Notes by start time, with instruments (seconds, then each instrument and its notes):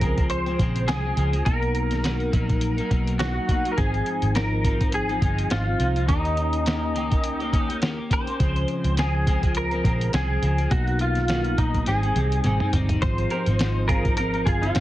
Already playing: picked electric bass C#2, electric slide guitar A#4
0.01 clean electric guitar C#3 F3 G#3 C4, kick, closed hi-hat
0.17 clean electric guitar F3 G#3 C4, kick, closed hi-hat
0.30 electric slide guitar C5, closed hi-hat
0.46 clean electric guitar F3 G#3 C4, closed hi-hat
0.59 picked electric bass A#1, clean electric guitar C#3 F3 G#3 C4, kick, closed hi-hat
0.76 closed hi-hat
0.88 picked electric bass C2, clean electric guitar C#3 F3 G#3 C4, electric slide guitar G#4, snare, closed hi-hat
1.03 clean electric guitar F3 G#3 C4
1.17 picked electric bass C#2, clean electric guitar C#3 F3 G#3 C4, closed hi-hat
1.32 clean electric guitar F3 G#3 C4, closed hi-hat
1.45 picked electric bass B1, clean electric guitar B2 F#3 A#3 D#4, electric slide guitar A#4, kick, closed hi-hat
1.63 closed hi-hat
1.75 closed hi-hat
1.91 snare, closed hi-hat
2.03 clean electric guitar B2 F#3 A#3 D#4, snare, closed hi-hat
2.20 closed hi-hat
2.32 picked electric bass A#1, clean electric guitar B2 F#3 A#3 D#4, kick, closed hi-hat
2.48 clean electric guitar F#3 A#3 D#4, kick, closed hi-hat
2.61 closed hi-hat
2.77 clean electric guitar F#3 A#3 D#4, closed hi-hat
2.90 picked electric bass B1, clean electric guitar B2 F#3 A#3 D#4, kick, closed hi-hat
3.07 closed hi-hat
3.19 clean electric guitar B2 F#3 A#3 D#4, electric slide guitar F#4, snare, closed hi-hat
3.34 clean electric guitar F#3 A#3 D#4
3.48 clean electric guitar B2 F#3 A#3 D#4, kick, closed hi-hat
3.64 clean electric guitar F#3 A#3 D#4, closed hi-hat
3.72 electric slide guitar A#4
3.77 picked electric bass G#1, clean electric guitar G#2 F3 C4 D#4, electric slide guitar G#4, kick, closed hi-hat
3.94 closed hi-hat
4.06 closed hi-hat
4.22 picked electric bass G#1, closed hi-hat
4.34 clean electric guitar G#2 F3 C4 D#4, electric slide guitar A#4, snare, closed hi-hat
4.63 clean electric guitar G#2 F3 C4 D#4, kick, closed hi-hat
4.79 clean electric guitar F3 C4 D#4, kick, closed hi-hat
4.92 electric slide guitar G#4, closed hi-hat
5.08 clean electric guitar F3 C4 D#4, closed hi-hat
5.20 picked electric bass G1, clean electric guitar G#2 F3 C4 D#4, kick, closed hi-hat
5.38 closed hi-hat
5.50 picked electric bass G#1, clean electric guitar G#2 F3 C4 D#4, electric slide guitar F4, snare, closed hi-hat
5.65 clean electric guitar F3 C4 D#4
5.79 picked electric bass C2, clean electric guitar G#2 F3 C4 D#4, closed hi-hat
5.95 clean electric guitar F3 C4 D#4, closed hi-hat
6.08 picked electric bass D#2, clean electric guitar D#3 A#3 C#4 G4, electric slide guitar D#4, kick, closed hi-hat
6.25 closed hi-hat
6.37 closed hi-hat
6.53 closed hi-hat
6.66 clean electric guitar D#3 A#3 C#4 G4, snare, closed hi-hat
6.95 picked electric bass C#2, clean electric guitar D#3 A#3 C#4 G4, closed hi-hat
7.10 clean electric guitar A#3 C#4 G4, kick, closed hi-hat
7.24 closed hi-hat
7.40 clean electric guitar A#3 C#4 G4, closed hi-hat
7.52 picked electric bass D#2, clean electric guitar D#3 A#3 C#4 G4, kick, closed hi-hat
7.69 clean electric guitar A#3 C#4 G4, closed hi-hat
7.82 clean electric guitar D#3 A#3 C#4 G4, snare, closed hi-hat
7.97 clean electric guitar A#3 C#4 G4
8.10 clean electric guitar D#3 A#3 C#4 G4, electric slide guitar C5, kick, closed hi-hat
8.26 clean electric guitar A#3 C#4 G4, closed hi-hat
8.40 picked electric bass C#2, clean electric guitar C#3 F3 G#3 C4, kick, closed hi-hat
8.56 closed hi-hat
8.68 closed hi-hat
8.84 picked electric bass C#2, closed hi-hat
8.97 clean electric guitar C#3 F3 G#3 C4, electric slide guitar G#4, snare, closed hi-hat
9.26 clean electric guitar C#3 F3 G#3 C4, kick, closed hi-hat
9.42 clean electric guitar F3 G#3 C4, kick, closed hi-hat
9.55 electric slide guitar A#4, closed hi-hat
9.71 clean electric guitar F3 G#3 C4, closed hi-hat
9.84 picked electric bass A#1, clean electric guitar C#3 F3 G#3 C4, kick, closed hi-hat
10.01 closed hi-hat
10.13 picked electric bass C2, clean electric guitar C#3 F3 G#3 C4, electric slide guitar G#4, snare, closed hi-hat
10.29 clean electric guitar F3 G#3 C4
10.42 picked electric bass C#2, clean electric guitar C#3 F3 G#3 C4, closed hi-hat
10.58 clean electric guitar F3 G#3 C4, closed hi-hat
10.70 picked electric bass B1, clean electric guitar B2 F#3 A#3 D#4, electric slide guitar F#4, kick, closed hi-hat
10.88 closed hi-hat
10.99 electric slide guitar F4, closed hi-hat
11.15 snare, closed hi-hat
11.28 clean electric guitar B2 F#3 A#3 D#4, snare, closed hi-hat
11.44 closed hi-hat
11.57 picked electric bass A#1, clean electric guitar B2 F#3 A#3 D#4, electric slide guitar D#4, kick, closed hi-hat
11.74 kick, closed hi-hat
11.86 picked electric bass G#1, clean electric guitar G#2 G3 C4 D#4, electric slide guitar G#4, snare, closed hi-hat
12.02 clean electric guitar G3 C4 D#4, closed hi-hat
12.15 picked electric bass C2, clean electric guitar G#2 G3 C4 D#4, closed hi-hat, high tom
12.32 closed hi-hat
12.44 picked electric bass G#1, clean electric guitar G#2 G3 C4 D#4, closed hi-hat, mid tom
12.60 clean electric guitar G3 C4 D#4, mid tom
12.73 picked electric bass G1, clean electric guitar G#2 G3 C4 D#4, closed hi-hat, floor tom
12.89 clean electric guitar G3 C4 D#4, closed hi-hat, floor tom
13.02 picked electric bass G#1, clean electric guitar G#2 F3 C4 D#4, electric slide guitar C5, kick, closed hi-hat
13.18 closed hi-hat
13.30 clean electric guitar G#2 F3 C4 D#4 G4 A#4, closed hi-hat
13.46 picked electric bass G#1, clean electric guitar F3 C4 D#4, closed hi-hat
13.59 clean electric guitar G#2 F3 C4 D#4, snare, closed hi-hat
13.88 clean electric guitar G#2 F3 C4 F4 G#4, electric slide guitar A#4, kick, closed hi-hat
13.92 clean electric guitar D#4
14.05 clean electric guitar F3 C4 D#4, kick, closed hi-hat
14.17 clean electric guitar G#2 F3 C4 D#4, electric slide guitar A#4, closed hi-hat
14.33 clean electric guitar F3 C4 D#4, closed hi-hat
14.46 picked electric bass G1, clean electric guitar F4 G#4, electric slide guitar G#4, kick, closed hi-hat
14.61 clean electric guitar F3 C4 D#4, electric slide guitar F4, closed hi-hat
14.74 picked electric bass G#1, clean electric guitar G#2 F3 C4 D#4, snare, closed hi-hat